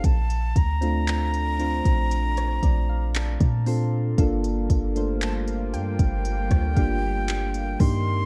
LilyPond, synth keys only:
\new Staff \with { instrumentName = "Synth keys" } { \time 4/4 \key g \minor \tempo 4 = 58 << { r2 r8 d''16 f''16 a''8 c'''8 | r1 | } \\ { r8. <a c' d' f'>8 r16 <c' d' f' c''>4~ <c' d' f' c''>16 r8. <c' d' f' a'>16 r16 | <bes d' f' a'>8 r16 <a bes d' f' c''>4 r8. <bes d' f' g'>4 <bes d' ees' g'>8 | } >> }